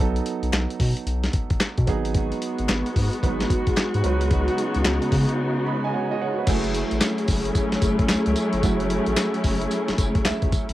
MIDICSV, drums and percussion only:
0, 0, Header, 1, 2, 480
1, 0, Start_track
1, 0, Tempo, 540541
1, 1907, Time_signature, 4, 2, 24, 8
1, 9528, End_track
2, 0, Start_track
2, 0, Title_t, "Drums"
2, 142, Note_on_c, 9, 42, 45
2, 229, Note_off_c, 9, 42, 0
2, 229, Note_on_c, 9, 42, 76
2, 318, Note_off_c, 9, 42, 0
2, 381, Note_on_c, 9, 42, 47
2, 469, Note_off_c, 9, 42, 0
2, 469, Note_on_c, 9, 39, 91
2, 469, Note_on_c, 9, 42, 72
2, 472, Note_on_c, 9, 38, 104
2, 474, Note_off_c, 9, 39, 0
2, 474, Note_on_c, 9, 39, 93
2, 558, Note_off_c, 9, 42, 0
2, 561, Note_off_c, 9, 38, 0
2, 563, Note_off_c, 9, 39, 0
2, 625, Note_on_c, 9, 42, 49
2, 709, Note_on_c, 9, 36, 83
2, 709, Note_on_c, 9, 46, 86
2, 714, Note_off_c, 9, 42, 0
2, 797, Note_off_c, 9, 46, 0
2, 798, Note_off_c, 9, 36, 0
2, 860, Note_on_c, 9, 42, 50
2, 948, Note_off_c, 9, 42, 0
2, 948, Note_on_c, 9, 42, 77
2, 1037, Note_off_c, 9, 42, 0
2, 1097, Note_on_c, 9, 42, 48
2, 1099, Note_on_c, 9, 38, 61
2, 1184, Note_off_c, 9, 42, 0
2, 1184, Note_on_c, 9, 42, 84
2, 1187, Note_on_c, 9, 36, 88
2, 1188, Note_off_c, 9, 38, 0
2, 1273, Note_off_c, 9, 42, 0
2, 1276, Note_off_c, 9, 36, 0
2, 1334, Note_on_c, 9, 42, 48
2, 1337, Note_on_c, 9, 36, 94
2, 1423, Note_off_c, 9, 42, 0
2, 1425, Note_on_c, 9, 38, 123
2, 1426, Note_off_c, 9, 36, 0
2, 1427, Note_on_c, 9, 39, 80
2, 1429, Note_on_c, 9, 42, 69
2, 1513, Note_off_c, 9, 38, 0
2, 1516, Note_off_c, 9, 39, 0
2, 1518, Note_off_c, 9, 42, 0
2, 1577, Note_on_c, 9, 42, 46
2, 1580, Note_on_c, 9, 36, 92
2, 1664, Note_off_c, 9, 42, 0
2, 1664, Note_on_c, 9, 42, 70
2, 1667, Note_off_c, 9, 36, 0
2, 1667, Note_on_c, 9, 36, 85
2, 1753, Note_off_c, 9, 42, 0
2, 1756, Note_off_c, 9, 36, 0
2, 1820, Note_on_c, 9, 42, 52
2, 1904, Note_off_c, 9, 42, 0
2, 1904, Note_on_c, 9, 42, 80
2, 1907, Note_on_c, 9, 36, 100
2, 1993, Note_off_c, 9, 42, 0
2, 1996, Note_off_c, 9, 36, 0
2, 2057, Note_on_c, 9, 42, 43
2, 2146, Note_off_c, 9, 42, 0
2, 2147, Note_on_c, 9, 42, 77
2, 2236, Note_off_c, 9, 42, 0
2, 2295, Note_on_c, 9, 42, 44
2, 2384, Note_off_c, 9, 42, 0
2, 2386, Note_on_c, 9, 39, 87
2, 2386, Note_on_c, 9, 42, 80
2, 2388, Note_on_c, 9, 38, 105
2, 2390, Note_off_c, 9, 39, 0
2, 2390, Note_on_c, 9, 39, 87
2, 2474, Note_off_c, 9, 42, 0
2, 2477, Note_off_c, 9, 38, 0
2, 2479, Note_off_c, 9, 39, 0
2, 2540, Note_on_c, 9, 42, 44
2, 2628, Note_on_c, 9, 36, 84
2, 2629, Note_off_c, 9, 42, 0
2, 2629, Note_on_c, 9, 46, 78
2, 2717, Note_off_c, 9, 36, 0
2, 2717, Note_off_c, 9, 46, 0
2, 2781, Note_on_c, 9, 42, 52
2, 2868, Note_on_c, 9, 36, 84
2, 2870, Note_off_c, 9, 42, 0
2, 2872, Note_on_c, 9, 42, 75
2, 2956, Note_off_c, 9, 36, 0
2, 2961, Note_off_c, 9, 42, 0
2, 3022, Note_on_c, 9, 42, 53
2, 3024, Note_on_c, 9, 38, 66
2, 3109, Note_on_c, 9, 36, 96
2, 3111, Note_off_c, 9, 42, 0
2, 3111, Note_on_c, 9, 42, 89
2, 3113, Note_off_c, 9, 38, 0
2, 3198, Note_off_c, 9, 36, 0
2, 3199, Note_off_c, 9, 42, 0
2, 3256, Note_on_c, 9, 42, 51
2, 3259, Note_on_c, 9, 36, 85
2, 3345, Note_off_c, 9, 42, 0
2, 3346, Note_on_c, 9, 39, 74
2, 3348, Note_off_c, 9, 36, 0
2, 3348, Note_on_c, 9, 38, 119
2, 3351, Note_off_c, 9, 39, 0
2, 3351, Note_on_c, 9, 39, 94
2, 3352, Note_on_c, 9, 42, 70
2, 3437, Note_off_c, 9, 38, 0
2, 3439, Note_off_c, 9, 39, 0
2, 3441, Note_off_c, 9, 42, 0
2, 3500, Note_on_c, 9, 42, 49
2, 3586, Note_off_c, 9, 42, 0
2, 3586, Note_on_c, 9, 42, 72
2, 3674, Note_off_c, 9, 42, 0
2, 3737, Note_on_c, 9, 42, 56
2, 3824, Note_off_c, 9, 42, 0
2, 3824, Note_on_c, 9, 42, 74
2, 3826, Note_on_c, 9, 36, 110
2, 3913, Note_off_c, 9, 42, 0
2, 3915, Note_off_c, 9, 36, 0
2, 3976, Note_on_c, 9, 42, 40
2, 4065, Note_off_c, 9, 42, 0
2, 4069, Note_on_c, 9, 42, 77
2, 4157, Note_off_c, 9, 42, 0
2, 4213, Note_on_c, 9, 42, 47
2, 4302, Note_off_c, 9, 42, 0
2, 4303, Note_on_c, 9, 42, 76
2, 4306, Note_on_c, 9, 38, 111
2, 4306, Note_on_c, 9, 39, 90
2, 4308, Note_off_c, 9, 39, 0
2, 4308, Note_on_c, 9, 39, 89
2, 4392, Note_off_c, 9, 42, 0
2, 4395, Note_off_c, 9, 38, 0
2, 4397, Note_off_c, 9, 39, 0
2, 4457, Note_on_c, 9, 42, 48
2, 4546, Note_off_c, 9, 42, 0
2, 4546, Note_on_c, 9, 46, 84
2, 4547, Note_on_c, 9, 36, 88
2, 4634, Note_off_c, 9, 46, 0
2, 4636, Note_off_c, 9, 36, 0
2, 4698, Note_on_c, 9, 42, 51
2, 4786, Note_off_c, 9, 42, 0
2, 5744, Note_on_c, 9, 42, 86
2, 5744, Note_on_c, 9, 49, 108
2, 5745, Note_on_c, 9, 54, 70
2, 5747, Note_on_c, 9, 36, 108
2, 5833, Note_off_c, 9, 42, 0
2, 5833, Note_off_c, 9, 49, 0
2, 5834, Note_off_c, 9, 54, 0
2, 5835, Note_off_c, 9, 36, 0
2, 5896, Note_on_c, 9, 42, 44
2, 5984, Note_off_c, 9, 42, 0
2, 5990, Note_on_c, 9, 42, 77
2, 6078, Note_off_c, 9, 42, 0
2, 6137, Note_on_c, 9, 42, 47
2, 6222, Note_off_c, 9, 42, 0
2, 6222, Note_on_c, 9, 42, 74
2, 6223, Note_on_c, 9, 54, 109
2, 6225, Note_on_c, 9, 38, 110
2, 6226, Note_on_c, 9, 39, 97
2, 6227, Note_off_c, 9, 39, 0
2, 6227, Note_on_c, 9, 39, 86
2, 6311, Note_off_c, 9, 42, 0
2, 6312, Note_off_c, 9, 54, 0
2, 6313, Note_off_c, 9, 38, 0
2, 6316, Note_off_c, 9, 39, 0
2, 6377, Note_on_c, 9, 42, 48
2, 6461, Note_on_c, 9, 54, 62
2, 6464, Note_on_c, 9, 46, 83
2, 6466, Note_off_c, 9, 42, 0
2, 6466, Note_on_c, 9, 36, 89
2, 6550, Note_off_c, 9, 54, 0
2, 6553, Note_off_c, 9, 46, 0
2, 6555, Note_off_c, 9, 36, 0
2, 6618, Note_on_c, 9, 42, 57
2, 6702, Note_on_c, 9, 54, 68
2, 6705, Note_on_c, 9, 36, 92
2, 6706, Note_off_c, 9, 42, 0
2, 6706, Note_on_c, 9, 42, 85
2, 6791, Note_off_c, 9, 54, 0
2, 6793, Note_off_c, 9, 36, 0
2, 6795, Note_off_c, 9, 42, 0
2, 6856, Note_on_c, 9, 42, 49
2, 6858, Note_on_c, 9, 38, 64
2, 6942, Note_off_c, 9, 42, 0
2, 6942, Note_on_c, 9, 42, 84
2, 6944, Note_on_c, 9, 36, 93
2, 6945, Note_on_c, 9, 54, 76
2, 6947, Note_off_c, 9, 38, 0
2, 7031, Note_off_c, 9, 42, 0
2, 7033, Note_off_c, 9, 36, 0
2, 7034, Note_off_c, 9, 54, 0
2, 7095, Note_on_c, 9, 42, 49
2, 7096, Note_on_c, 9, 36, 95
2, 7182, Note_on_c, 9, 38, 120
2, 7183, Note_on_c, 9, 54, 90
2, 7184, Note_off_c, 9, 42, 0
2, 7185, Note_off_c, 9, 36, 0
2, 7185, Note_on_c, 9, 39, 80
2, 7186, Note_on_c, 9, 42, 67
2, 7271, Note_off_c, 9, 38, 0
2, 7272, Note_off_c, 9, 54, 0
2, 7274, Note_off_c, 9, 39, 0
2, 7275, Note_off_c, 9, 42, 0
2, 7334, Note_on_c, 9, 42, 50
2, 7422, Note_off_c, 9, 42, 0
2, 7422, Note_on_c, 9, 42, 72
2, 7422, Note_on_c, 9, 54, 66
2, 7511, Note_off_c, 9, 42, 0
2, 7511, Note_off_c, 9, 54, 0
2, 7572, Note_on_c, 9, 42, 56
2, 7661, Note_off_c, 9, 42, 0
2, 7664, Note_on_c, 9, 42, 76
2, 7665, Note_on_c, 9, 36, 104
2, 7665, Note_on_c, 9, 54, 70
2, 7753, Note_off_c, 9, 42, 0
2, 7754, Note_off_c, 9, 36, 0
2, 7754, Note_off_c, 9, 54, 0
2, 7815, Note_on_c, 9, 42, 45
2, 7904, Note_off_c, 9, 42, 0
2, 7904, Note_on_c, 9, 42, 77
2, 7993, Note_off_c, 9, 42, 0
2, 8049, Note_on_c, 9, 42, 46
2, 8138, Note_off_c, 9, 42, 0
2, 8139, Note_on_c, 9, 42, 77
2, 8140, Note_on_c, 9, 54, 101
2, 8142, Note_on_c, 9, 38, 114
2, 8143, Note_on_c, 9, 39, 99
2, 8144, Note_off_c, 9, 39, 0
2, 8144, Note_on_c, 9, 39, 83
2, 8228, Note_off_c, 9, 42, 0
2, 8229, Note_off_c, 9, 54, 0
2, 8231, Note_off_c, 9, 38, 0
2, 8233, Note_off_c, 9, 39, 0
2, 8295, Note_on_c, 9, 42, 47
2, 8380, Note_on_c, 9, 54, 70
2, 8383, Note_off_c, 9, 42, 0
2, 8383, Note_on_c, 9, 46, 87
2, 8385, Note_on_c, 9, 36, 84
2, 8468, Note_off_c, 9, 54, 0
2, 8472, Note_off_c, 9, 46, 0
2, 8473, Note_off_c, 9, 36, 0
2, 8538, Note_on_c, 9, 42, 56
2, 8620, Note_on_c, 9, 54, 63
2, 8624, Note_off_c, 9, 42, 0
2, 8624, Note_on_c, 9, 42, 77
2, 8709, Note_off_c, 9, 54, 0
2, 8713, Note_off_c, 9, 42, 0
2, 8775, Note_on_c, 9, 42, 51
2, 8777, Note_on_c, 9, 38, 61
2, 8862, Note_off_c, 9, 42, 0
2, 8862, Note_on_c, 9, 42, 89
2, 8864, Note_on_c, 9, 36, 97
2, 8866, Note_off_c, 9, 38, 0
2, 8866, Note_on_c, 9, 54, 72
2, 8951, Note_off_c, 9, 42, 0
2, 8953, Note_off_c, 9, 36, 0
2, 8954, Note_off_c, 9, 54, 0
2, 9012, Note_on_c, 9, 42, 51
2, 9015, Note_on_c, 9, 36, 99
2, 9101, Note_off_c, 9, 42, 0
2, 9103, Note_on_c, 9, 38, 121
2, 9103, Note_on_c, 9, 54, 87
2, 9104, Note_off_c, 9, 36, 0
2, 9105, Note_on_c, 9, 39, 97
2, 9106, Note_off_c, 9, 39, 0
2, 9106, Note_on_c, 9, 39, 80
2, 9107, Note_on_c, 9, 42, 71
2, 9192, Note_off_c, 9, 38, 0
2, 9192, Note_off_c, 9, 54, 0
2, 9194, Note_off_c, 9, 39, 0
2, 9196, Note_off_c, 9, 42, 0
2, 9253, Note_on_c, 9, 42, 46
2, 9256, Note_on_c, 9, 36, 104
2, 9341, Note_off_c, 9, 42, 0
2, 9345, Note_off_c, 9, 36, 0
2, 9345, Note_on_c, 9, 36, 101
2, 9345, Note_on_c, 9, 42, 75
2, 9345, Note_on_c, 9, 54, 69
2, 9433, Note_off_c, 9, 42, 0
2, 9434, Note_off_c, 9, 36, 0
2, 9434, Note_off_c, 9, 54, 0
2, 9493, Note_on_c, 9, 42, 54
2, 9528, Note_off_c, 9, 42, 0
2, 9528, End_track
0, 0, End_of_file